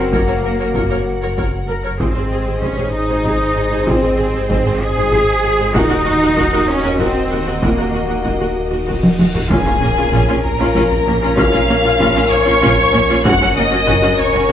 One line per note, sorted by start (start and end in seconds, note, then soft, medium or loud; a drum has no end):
0.00 2.02 F#1 medium
0.00 0.13 C4 medium
0.00 1.65 F#4 medium
0.00 1.65 A#4 medium
0.00 1.76 F#5 soft
0.12 0.19 F#1 medium
0.12 1.07 A#3 medium
0.12 0.20 A#4 medium
0.12 0.19 C#5 medium
0.12 taiko medium
0.29 0.35 F#1 soft
0.29 0.35 A#4 soft
0.29 0.35 C#5 soft
0.45 0.51 F#1 soft
0.45 0.51 A#4 soft
0.59 0.67 F#1 soft
0.59 0.67 A#4 soft
0.59 0.66 C#5 soft
0.75 0.82 F#1 medium
0.75 0.81 A#4 soft
0.75 0.81 C#5 soft
0.75 taiko medium
0.90 0.98 F#1 soft
0.90 0.97 A#4 soft
0.90 0.97 C#5 soft
1.22 1.28 F#1 soft
1.22 1.29 A#4 soft
1.22 1.28 C#5 soft
1.37 1.44 F#1 soft
1.37 1.44 A#4 soft
1.37 1.44 C#5 soft
1.37 taiko medium
1.69 1.75 F#1 soft
1.69 1.75 A#4 soft
1.84 1.91 F#1 soft
1.84 1.90 A#4 soft
1.84 1.90 C#5 soft
2.00 2.07 G#1 soft
2.00 5.77 G#1 soft
2.00 2.59 C4 medium
2.00 2.06 G#4 soft
2.00 5.72 G#4 soft
2.00 2.06 C5 medium
2.00 5.72 C5 soft
2.00 5.72 D#5 soft
2.00 taiko medium
2.15 2.22 G#1 soft
2.15 2.23 G#4 soft
2.15 2.22 C5 soft
2.32 2.38 G#1 soft
2.32 2.38 G#4 soft
2.47 2.53 G#1 soft
2.47 2.53 G#4 soft
2.47 2.53 C5 soft
2.62 2.69 G#1 medium
2.62 2.94 C#4 medium
2.62 2.69 G#4 soft
2.62 2.68 C5 soft
2.62 taiko medium
2.77 2.85 G#1 soft
2.77 2.84 G#4 soft
2.77 2.84 C5 soft
2.94 3.86 D#4 medium
3.09 3.16 G#1 soft
3.09 3.16 G#4 soft
3.09 3.16 C5 soft
3.24 3.30 G#1 soft
3.24 3.32 G#4 soft
3.24 3.31 C5 medium
3.24 taiko medium
3.56 3.63 G#1 soft
3.56 3.62 G#4 soft
3.56 3.63 G#4 soft
3.71 3.78 G#1 soft
3.71 3.79 G#4 soft
3.71 3.79 C5 soft
3.87 3.94 G#1 medium
3.87 4.81 C4 medium
3.87 3.94 G#4 soft
3.87 3.94 C5 medium
3.87 taiko medium
4.03 4.10 G#1 soft
4.03 4.09 G#4 soft
4.03 4.09 C5 soft
4.18 4.25 G#1 soft
4.18 4.24 G#4 soft
4.18 4.25 G#4 soft
4.33 4.41 G#1 soft
4.33 4.42 G#4 soft
4.33 4.40 C5 soft
4.49 4.56 G#1 medium
4.49 4.57 G#4 medium
4.49 4.56 C5 medium
4.49 taiko medium
4.65 4.72 G#1 soft
4.65 4.72 G#4 soft
4.65 4.72 C5 soft
4.81 5.75 G#4 medium
4.97 5.03 G#1 soft
4.97 5.04 G#4 medium
4.97 5.03 C5 medium
5.12 5.18 G#1 medium
5.12 5.20 G#4 medium
5.12 5.19 C5 medium
5.12 taiko medium
5.44 5.50 G#1 soft
5.44 5.50 G#4 medium
5.44 5.51 G#4 medium
5.59 5.66 G#1 medium
5.59 5.65 G#4 medium
5.59 5.66 C5 medium
5.74 9.50 D#1 medium
5.74 5.82 D#2 medium
5.74 6.69 D#4 medium
5.74 5.81 F#4 medium
5.74 9.15 F#4 medium
5.74 9.15 A#4 medium
5.74 5.82 A#4 medium
5.74 9.27 D#5 medium
5.74 taiko medium
5.89 5.97 D#2 medium
5.89 5.96 F#4 soft
5.89 5.97 A#4 soft
6.05 6.13 D#2 medium
6.05 6.11 F#4 soft
6.05 6.12 F#4 medium
6.20 6.29 D#2 soft
6.20 6.28 F#4 soft
6.20 6.27 A#4 medium
6.36 6.44 D#2 medium
6.36 6.43 F#4 medium
6.36 6.42 A#4 medium
6.36 taiko medium
6.51 6.59 D#2 soft
6.51 6.60 F#4 soft
6.51 6.58 A#4 medium
6.69 7.00 C#4 medium
6.84 6.91 D#2 soft
6.84 6.90 F#4 soft
6.84 6.90 A#4 soft
6.99 7.06 D#2 medium
6.99 7.61 C4 medium
6.99 7.06 F#4 medium
6.99 7.06 A#4 medium
6.99 taiko medium
7.31 7.38 D#2 soft
7.31 7.38 F#4 soft
7.46 7.53 D#2 soft
7.46 7.53 F#4 soft
7.46 7.53 A#4 soft
7.62 7.69 D#2 medium
7.62 8.56 A#3 medium
7.62 7.69 F#4 soft
7.62 7.69 A#4 medium
7.62 taiko medium
7.62 reverse cymbal medium
7.78 7.84 D#2 soft
7.78 7.85 F#4 soft
7.78 7.86 A#4 soft
7.93 8.00 D#2 soft
7.93 7.99 F#4 soft
7.93 8.01 F#4 soft
8.08 8.15 D#2 soft
8.08 8.15 F#4 soft
8.08 8.16 A#4 soft
8.24 8.31 D#2 soft
8.24 8.30 F#4 soft
8.24 8.32 A#4 soft
8.24 taiko medium
8.40 8.46 D#2 soft
8.40 8.47 F#4 soft
8.40 8.48 A#4 soft
8.71 8.78 D#2 soft
8.71 8.78 F#4 soft
8.71 8.79 A#4 soft
8.87 8.93 D#2 soft
8.87 8.93 F#4 soft
8.87 8.94 A#4 soft
8.87 taiko medium
9.03 taiko high medium
9.19 9.25 D#2 soft
9.19 9.26 F#4 soft
9.19 taiko high medium
9.34 9.41 D#2 soft
9.34 9.41 F#4 soft
9.34 9.41 A#4 soft
9.34 taiko low medium
9.50 9.56 A#1 medium
9.50 13.27 A#1 medium
9.50 9.56 A#2 medium
9.50 9.56 C#4 medium
9.50 13.21 C#4 medium
9.50 9.56 F4 medium
9.50 10.40 G#4 medium
9.50 13.21 A#4 medium
9.50 10.40 G#5 medium
9.50 taiko medium
9.50 impact medium
9.66 9.72 A#2 soft
9.66 9.72 C#4 soft
9.66 9.72 F4 soft
9.81 9.87 A#1 soft
9.81 9.88 A#2 soft
9.81 9.88 A#3 soft
9.81 9.88 C#4 soft
9.98 10.04 A#2 soft
9.98 10.04 C#4 soft
9.98 10.04 F4 soft
10.12 10.19 A#1 medium
10.12 10.20 A#2 medium
10.12 10.20 C#4 medium
10.12 10.20 F4 medium
10.12 taiko medium
10.29 10.35 A#2 soft
10.29 10.35 C#4 soft
10.29 10.35 F4 soft
10.44 11.36 A#4 medium
10.44 11.38 A#5 medium
10.44 taiko low medium
10.60 10.66 A#2 soft
10.60 10.67 C#4 medium
10.60 10.67 F4 medium
10.60 taiko low soft
10.75 10.82 A#1 medium
10.75 10.82 A#2 medium
10.75 10.82 C#4 medium
10.75 10.82 F4 medium
10.75 taiko medium
10.91 taiko low soft
11.06 11.14 A#1 medium
11.06 11.14 A#2 medium
11.06 11.13 A#3 medium
11.06 11.13 C#4 soft
11.06 taiko low medium
11.22 11.29 A#2 medium
11.22 11.29 C#4 medium
11.22 11.29 F4 medium
11.38 11.44 A#1 medium
11.38 11.44 A#2 medium
11.38 11.44 C#4 medium
11.38 11.44 F4 medium
11.38 12.30 F5 medium
11.38 12.30 F6 medium
11.38 taiko medium
11.53 11.60 A#2 medium
11.53 11.59 C#4 medium
11.53 11.60 F4 medium
11.69 11.76 A#1 medium
11.69 11.76 A#2 medium
11.69 11.76 A#3 medium
11.69 11.75 C#4 medium
11.85 11.91 A#2 medium
11.85 11.91 C#4 medium
11.85 11.91 F4 medium
12.00 12.07 A#1 loud
12.00 12.07 A#2 medium
12.00 12.07 C#4 medium
12.00 12.07 F4 medium
12.00 taiko medium
12.16 12.23 A#2 medium
12.16 12.22 C#4 medium
12.16 12.22 F4 medium
12.31 13.25 C#5 medium
12.31 13.25 C#6 loud
12.31 taiko low medium
12.47 12.54 A#2 medium
12.47 12.53 C#4 medium
12.47 12.54 F4 medium
12.47 taiko low soft
12.62 12.69 A#1 medium
12.62 12.69 A#2 medium
12.62 12.68 C#4 medium
12.62 12.68 F4 medium
12.62 taiko medium
12.79 taiko low medium
12.93 13.01 A#1 medium
12.93 13.01 A#2 medium
12.93 13.00 A#3 medium
12.93 12.99 C#4 medium
12.93 taiko low medium
13.09 13.17 A#2 medium
13.09 13.16 C#4 medium
13.09 13.16 F4 medium
13.24 13.31 F#1 medium
13.24 14.52 F#1 medium
13.24 13.32 F#2 medium
13.24 14.52 C#4 medium
13.24 13.31 C#4 medium
13.24 13.31 F#4 medium
13.24 14.52 A#4 medium
13.24 13.56 F#5 medium
13.24 13.56 F#6 medium
13.24 taiko loud
13.41 13.47 F#2 medium
13.41 13.48 C#4 soft
13.41 13.48 F#4 soft
13.56 13.63 F#1 medium
13.56 13.63 F#2 medium
13.56 13.63 A#3 medium
13.56 13.63 C#4 medium
13.56 14.18 D#5 medium
13.56 14.18 D#6 medium
13.72 13.78 F#2 medium
13.72 13.78 C#4 medium
13.72 13.78 F#4 medium
13.87 13.94 F#1 medium
13.87 13.94 F#2 medium
13.87 13.94 C#4 medium
13.87 13.93 F#4 medium
13.87 taiko medium
14.03 14.10 F#2 medium
14.03 14.09 C#4 soft
14.03 14.09 F#4 soft
14.19 14.52 C#5 medium
14.19 14.52 C#6 medium
14.19 taiko low medium
14.34 14.41 F#2 soft
14.34 14.40 C#4 medium
14.34 14.40 F#4 medium
14.34 taiko low soft